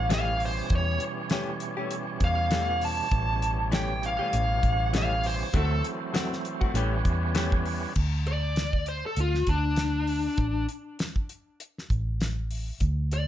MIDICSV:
0, 0, Header, 1, 6, 480
1, 0, Start_track
1, 0, Tempo, 604839
1, 561, Time_signature, 4, 2, 24, 8
1, 10535, End_track
2, 0, Start_track
2, 0, Title_t, "Lead electric guitar"
2, 0, Program_c, 0, 29
2, 109, Note_on_c, 0, 77, 89
2, 328, Note_off_c, 0, 77, 0
2, 361, Note_on_c, 0, 72, 87
2, 574, Note_off_c, 0, 72, 0
2, 599, Note_on_c, 0, 73, 116
2, 813, Note_off_c, 0, 73, 0
2, 1780, Note_on_c, 0, 77, 92
2, 2234, Note_off_c, 0, 77, 0
2, 2260, Note_on_c, 0, 81, 81
2, 2946, Note_off_c, 0, 81, 0
2, 2971, Note_on_c, 0, 79, 91
2, 3196, Note_off_c, 0, 79, 0
2, 3222, Note_on_c, 0, 77, 91
2, 3906, Note_off_c, 0, 77, 0
2, 3950, Note_on_c, 0, 77, 101
2, 4166, Note_off_c, 0, 77, 0
2, 4178, Note_on_c, 0, 72, 79
2, 4399, Note_off_c, 0, 72, 0
2, 4423, Note_on_c, 0, 69, 101
2, 4642, Note_off_c, 0, 69, 0
2, 6568, Note_on_c, 0, 74, 85
2, 7028, Note_off_c, 0, 74, 0
2, 7051, Note_on_c, 0, 72, 73
2, 7173, Note_off_c, 0, 72, 0
2, 7192, Note_on_c, 0, 69, 72
2, 7285, Note_off_c, 0, 69, 0
2, 7305, Note_on_c, 0, 65, 73
2, 7524, Note_off_c, 0, 65, 0
2, 7533, Note_on_c, 0, 62, 82
2, 8458, Note_off_c, 0, 62, 0
2, 10425, Note_on_c, 0, 74, 94
2, 10535, Note_off_c, 0, 74, 0
2, 10535, End_track
3, 0, Start_track
3, 0, Title_t, "Clean electric guitar"
3, 0, Program_c, 1, 27
3, 77, Note_on_c, 1, 52, 77
3, 82, Note_on_c, 1, 57, 82
3, 88, Note_on_c, 1, 61, 79
3, 94, Note_on_c, 1, 67, 82
3, 234, Note_off_c, 1, 52, 0
3, 236, Note_off_c, 1, 57, 0
3, 239, Note_off_c, 1, 61, 0
3, 242, Note_off_c, 1, 67, 0
3, 1039, Note_on_c, 1, 52, 90
3, 1045, Note_on_c, 1, 57, 86
3, 1052, Note_on_c, 1, 61, 99
3, 1058, Note_on_c, 1, 67, 99
3, 1194, Note_off_c, 1, 52, 0
3, 1197, Note_off_c, 1, 57, 0
3, 1200, Note_off_c, 1, 61, 0
3, 1203, Note_off_c, 1, 67, 0
3, 1404, Note_on_c, 1, 67, 62
3, 1420, Note_on_c, 1, 61, 60
3, 1433, Note_on_c, 1, 57, 53
3, 1541, Note_off_c, 1, 67, 0
3, 1549, Note_off_c, 1, 61, 0
3, 1556, Note_off_c, 1, 57, 0
3, 1995, Note_on_c, 1, 52, 78
3, 2003, Note_on_c, 1, 57, 83
3, 2008, Note_on_c, 1, 61, 77
3, 2015, Note_on_c, 1, 67, 78
3, 2151, Note_off_c, 1, 52, 0
3, 2155, Note_off_c, 1, 57, 0
3, 2157, Note_off_c, 1, 61, 0
3, 2161, Note_off_c, 1, 67, 0
3, 2950, Note_on_c, 1, 52, 81
3, 2958, Note_on_c, 1, 57, 79
3, 2965, Note_on_c, 1, 61, 90
3, 2969, Note_on_c, 1, 67, 90
3, 3107, Note_off_c, 1, 52, 0
3, 3111, Note_off_c, 1, 57, 0
3, 3115, Note_off_c, 1, 61, 0
3, 3117, Note_off_c, 1, 67, 0
3, 3325, Note_on_c, 1, 67, 58
3, 3341, Note_on_c, 1, 61, 54
3, 3354, Note_on_c, 1, 57, 50
3, 3460, Note_off_c, 1, 67, 0
3, 3468, Note_off_c, 1, 61, 0
3, 3474, Note_off_c, 1, 57, 0
3, 3916, Note_on_c, 1, 52, 77
3, 3926, Note_on_c, 1, 57, 92
3, 3931, Note_on_c, 1, 61, 85
3, 3936, Note_on_c, 1, 67, 82
3, 4070, Note_off_c, 1, 52, 0
3, 4075, Note_off_c, 1, 57, 0
3, 4077, Note_off_c, 1, 61, 0
3, 4080, Note_off_c, 1, 67, 0
3, 4395, Note_on_c, 1, 54, 81
3, 4405, Note_on_c, 1, 57, 89
3, 4412, Note_on_c, 1, 60, 84
3, 4415, Note_on_c, 1, 66, 94
3, 4549, Note_off_c, 1, 54, 0
3, 4554, Note_off_c, 1, 57, 0
3, 4557, Note_off_c, 1, 60, 0
3, 4559, Note_off_c, 1, 66, 0
3, 4872, Note_on_c, 1, 54, 87
3, 4879, Note_on_c, 1, 57, 98
3, 4885, Note_on_c, 1, 60, 106
3, 4890, Note_on_c, 1, 66, 105
3, 5028, Note_off_c, 1, 54, 0
3, 5031, Note_off_c, 1, 57, 0
3, 5034, Note_off_c, 1, 60, 0
3, 5036, Note_off_c, 1, 66, 0
3, 5245, Note_on_c, 1, 66, 67
3, 5258, Note_on_c, 1, 60, 59
3, 5272, Note_on_c, 1, 57, 53
3, 5349, Note_off_c, 1, 57, 0
3, 5351, Note_on_c, 1, 52, 85
3, 5353, Note_off_c, 1, 66, 0
3, 5359, Note_off_c, 1, 60, 0
3, 5359, Note_on_c, 1, 57, 88
3, 5364, Note_on_c, 1, 61, 90
3, 5372, Note_on_c, 1, 67, 110
3, 5507, Note_off_c, 1, 52, 0
3, 5511, Note_off_c, 1, 57, 0
3, 5514, Note_off_c, 1, 61, 0
3, 5517, Note_off_c, 1, 67, 0
3, 5832, Note_on_c, 1, 52, 86
3, 5838, Note_on_c, 1, 57, 90
3, 5846, Note_on_c, 1, 61, 91
3, 5851, Note_on_c, 1, 67, 91
3, 5988, Note_off_c, 1, 52, 0
3, 5991, Note_off_c, 1, 57, 0
3, 5995, Note_off_c, 1, 61, 0
3, 5997, Note_off_c, 1, 67, 0
3, 10535, End_track
4, 0, Start_track
4, 0, Title_t, "Tonewheel organ"
4, 0, Program_c, 2, 16
4, 0, Note_on_c, 2, 47, 57
4, 0, Note_on_c, 2, 52, 64
4, 0, Note_on_c, 2, 55, 59
4, 0, Note_on_c, 2, 61, 73
4, 2446, Note_off_c, 2, 52, 0
4, 2447, Note_off_c, 2, 55, 0
4, 2451, Note_off_c, 2, 47, 0
4, 2452, Note_off_c, 2, 61, 0
4, 2469, Note_on_c, 2, 52, 69
4, 2471, Note_on_c, 2, 55, 62
4, 2477, Note_on_c, 2, 47, 58
4, 2477, Note_on_c, 2, 61, 73
4, 4359, Note_off_c, 2, 52, 0
4, 4359, Note_off_c, 2, 55, 0
4, 4362, Note_off_c, 2, 47, 0
4, 4362, Note_off_c, 2, 61, 0
4, 4385, Note_on_c, 2, 52, 67
4, 4390, Note_on_c, 2, 54, 62
4, 4392, Note_on_c, 2, 57, 63
4, 4395, Note_on_c, 2, 60, 72
4, 5330, Note_off_c, 2, 52, 0
4, 5333, Note_off_c, 2, 54, 0
4, 5333, Note_off_c, 2, 57, 0
4, 5335, Note_off_c, 2, 60, 0
4, 5353, Note_on_c, 2, 52, 82
4, 5357, Note_on_c, 2, 55, 80
4, 5359, Note_on_c, 2, 59, 74
4, 5363, Note_on_c, 2, 61, 92
4, 6295, Note_off_c, 2, 52, 0
4, 6297, Note_off_c, 2, 55, 0
4, 6298, Note_off_c, 2, 59, 0
4, 6300, Note_off_c, 2, 61, 0
4, 10535, End_track
5, 0, Start_track
5, 0, Title_t, "Fingered electric bass"
5, 0, Program_c, 3, 33
5, 0, Note_on_c, 3, 33, 89
5, 474, Note_off_c, 3, 33, 0
5, 560, Note_on_c, 3, 40, 98
5, 771, Note_off_c, 3, 40, 0
5, 1751, Note_on_c, 3, 40, 89
5, 2385, Note_off_c, 3, 40, 0
5, 2473, Note_on_c, 3, 33, 105
5, 3316, Note_off_c, 3, 33, 0
5, 3437, Note_on_c, 3, 33, 103
5, 3647, Note_off_c, 3, 33, 0
5, 3679, Note_on_c, 3, 33, 92
5, 4308, Note_off_c, 3, 33, 0
5, 4398, Note_on_c, 3, 38, 109
5, 4607, Note_off_c, 3, 38, 0
5, 5347, Note_on_c, 3, 33, 108
5, 5561, Note_off_c, 3, 33, 0
5, 5597, Note_on_c, 3, 40, 99
5, 6228, Note_off_c, 3, 40, 0
5, 6317, Note_on_c, 3, 38, 89
5, 7160, Note_off_c, 3, 38, 0
5, 7277, Note_on_c, 3, 38, 93
5, 7487, Note_off_c, 3, 38, 0
5, 7515, Note_on_c, 3, 38, 78
5, 8149, Note_off_c, 3, 38, 0
5, 8238, Note_on_c, 3, 33, 90
5, 8449, Note_off_c, 3, 33, 0
5, 9446, Note_on_c, 3, 33, 82
5, 10078, Note_off_c, 3, 33, 0
5, 10162, Note_on_c, 3, 38, 97
5, 10535, Note_off_c, 3, 38, 0
5, 10535, End_track
6, 0, Start_track
6, 0, Title_t, "Drums"
6, 82, Note_on_c, 9, 42, 86
6, 91, Note_on_c, 9, 38, 112
6, 161, Note_off_c, 9, 42, 0
6, 170, Note_off_c, 9, 38, 0
6, 319, Note_on_c, 9, 46, 79
6, 398, Note_off_c, 9, 46, 0
6, 555, Note_on_c, 9, 42, 79
6, 558, Note_on_c, 9, 36, 102
6, 634, Note_off_c, 9, 42, 0
6, 638, Note_off_c, 9, 36, 0
6, 794, Note_on_c, 9, 42, 64
6, 874, Note_off_c, 9, 42, 0
6, 1029, Note_on_c, 9, 42, 79
6, 1038, Note_on_c, 9, 38, 103
6, 1109, Note_off_c, 9, 42, 0
6, 1117, Note_off_c, 9, 38, 0
6, 1271, Note_on_c, 9, 42, 59
6, 1351, Note_off_c, 9, 42, 0
6, 1513, Note_on_c, 9, 42, 79
6, 1592, Note_off_c, 9, 42, 0
6, 1749, Note_on_c, 9, 42, 58
6, 1752, Note_on_c, 9, 36, 85
6, 1829, Note_off_c, 9, 42, 0
6, 1831, Note_off_c, 9, 36, 0
6, 1989, Note_on_c, 9, 42, 79
6, 1998, Note_on_c, 9, 38, 103
6, 2068, Note_off_c, 9, 42, 0
6, 2077, Note_off_c, 9, 38, 0
6, 2233, Note_on_c, 9, 46, 81
6, 2312, Note_off_c, 9, 46, 0
6, 2472, Note_on_c, 9, 36, 107
6, 2473, Note_on_c, 9, 42, 77
6, 2552, Note_off_c, 9, 36, 0
6, 2552, Note_off_c, 9, 42, 0
6, 2717, Note_on_c, 9, 42, 67
6, 2796, Note_off_c, 9, 42, 0
6, 2954, Note_on_c, 9, 42, 84
6, 2962, Note_on_c, 9, 38, 111
6, 3033, Note_off_c, 9, 42, 0
6, 3042, Note_off_c, 9, 38, 0
6, 3199, Note_on_c, 9, 42, 64
6, 3279, Note_off_c, 9, 42, 0
6, 3437, Note_on_c, 9, 42, 95
6, 3516, Note_off_c, 9, 42, 0
6, 3675, Note_on_c, 9, 36, 76
6, 3677, Note_on_c, 9, 42, 66
6, 3754, Note_off_c, 9, 36, 0
6, 3757, Note_off_c, 9, 42, 0
6, 3917, Note_on_c, 9, 42, 87
6, 3926, Note_on_c, 9, 38, 108
6, 3997, Note_off_c, 9, 42, 0
6, 4005, Note_off_c, 9, 38, 0
6, 4155, Note_on_c, 9, 46, 80
6, 4234, Note_off_c, 9, 46, 0
6, 4393, Note_on_c, 9, 42, 81
6, 4395, Note_on_c, 9, 36, 108
6, 4472, Note_off_c, 9, 42, 0
6, 4474, Note_off_c, 9, 36, 0
6, 4638, Note_on_c, 9, 42, 67
6, 4717, Note_off_c, 9, 42, 0
6, 4877, Note_on_c, 9, 42, 86
6, 4886, Note_on_c, 9, 38, 108
6, 4956, Note_off_c, 9, 42, 0
6, 4965, Note_off_c, 9, 38, 0
6, 5020, Note_on_c, 9, 38, 35
6, 5099, Note_off_c, 9, 38, 0
6, 5118, Note_on_c, 9, 42, 62
6, 5198, Note_off_c, 9, 42, 0
6, 5249, Note_on_c, 9, 36, 73
6, 5328, Note_off_c, 9, 36, 0
6, 5358, Note_on_c, 9, 42, 89
6, 5437, Note_off_c, 9, 42, 0
6, 5595, Note_on_c, 9, 36, 82
6, 5597, Note_on_c, 9, 42, 63
6, 5675, Note_off_c, 9, 36, 0
6, 5677, Note_off_c, 9, 42, 0
6, 5831, Note_on_c, 9, 42, 79
6, 5840, Note_on_c, 9, 38, 108
6, 5910, Note_off_c, 9, 42, 0
6, 5919, Note_off_c, 9, 38, 0
6, 5970, Note_on_c, 9, 36, 80
6, 6049, Note_off_c, 9, 36, 0
6, 6075, Note_on_c, 9, 46, 80
6, 6155, Note_off_c, 9, 46, 0
6, 6313, Note_on_c, 9, 49, 82
6, 6317, Note_on_c, 9, 36, 91
6, 6392, Note_off_c, 9, 49, 0
6, 6397, Note_off_c, 9, 36, 0
6, 6560, Note_on_c, 9, 42, 55
6, 6640, Note_off_c, 9, 42, 0
6, 6795, Note_on_c, 9, 42, 72
6, 6804, Note_on_c, 9, 38, 92
6, 6874, Note_off_c, 9, 42, 0
6, 6883, Note_off_c, 9, 38, 0
6, 6930, Note_on_c, 9, 36, 71
6, 7009, Note_off_c, 9, 36, 0
6, 7031, Note_on_c, 9, 42, 61
6, 7111, Note_off_c, 9, 42, 0
6, 7273, Note_on_c, 9, 42, 77
6, 7353, Note_off_c, 9, 42, 0
6, 7416, Note_on_c, 9, 38, 32
6, 7496, Note_off_c, 9, 38, 0
6, 7513, Note_on_c, 9, 42, 61
6, 7516, Note_on_c, 9, 36, 79
6, 7592, Note_off_c, 9, 42, 0
6, 7596, Note_off_c, 9, 36, 0
6, 7749, Note_on_c, 9, 42, 78
6, 7757, Note_on_c, 9, 38, 94
6, 7828, Note_off_c, 9, 42, 0
6, 7837, Note_off_c, 9, 38, 0
6, 7994, Note_on_c, 9, 46, 71
6, 8074, Note_off_c, 9, 46, 0
6, 8234, Note_on_c, 9, 42, 71
6, 8237, Note_on_c, 9, 36, 98
6, 8313, Note_off_c, 9, 42, 0
6, 8316, Note_off_c, 9, 36, 0
6, 8481, Note_on_c, 9, 42, 58
6, 8560, Note_off_c, 9, 42, 0
6, 8723, Note_on_c, 9, 42, 73
6, 8731, Note_on_c, 9, 38, 99
6, 8802, Note_off_c, 9, 42, 0
6, 8811, Note_off_c, 9, 38, 0
6, 8855, Note_on_c, 9, 36, 70
6, 8934, Note_off_c, 9, 36, 0
6, 8962, Note_on_c, 9, 42, 56
6, 9042, Note_off_c, 9, 42, 0
6, 9207, Note_on_c, 9, 42, 71
6, 9286, Note_off_c, 9, 42, 0
6, 9352, Note_on_c, 9, 38, 31
6, 9431, Note_off_c, 9, 38, 0
6, 9445, Note_on_c, 9, 36, 81
6, 9449, Note_on_c, 9, 42, 53
6, 9524, Note_off_c, 9, 36, 0
6, 9528, Note_off_c, 9, 42, 0
6, 9686, Note_on_c, 9, 42, 67
6, 9695, Note_on_c, 9, 38, 96
6, 9765, Note_off_c, 9, 42, 0
6, 9774, Note_off_c, 9, 38, 0
6, 9925, Note_on_c, 9, 46, 66
6, 10004, Note_off_c, 9, 46, 0
6, 10161, Note_on_c, 9, 42, 70
6, 10164, Note_on_c, 9, 36, 92
6, 10240, Note_off_c, 9, 42, 0
6, 10243, Note_off_c, 9, 36, 0
6, 10408, Note_on_c, 9, 42, 58
6, 10487, Note_off_c, 9, 42, 0
6, 10535, End_track
0, 0, End_of_file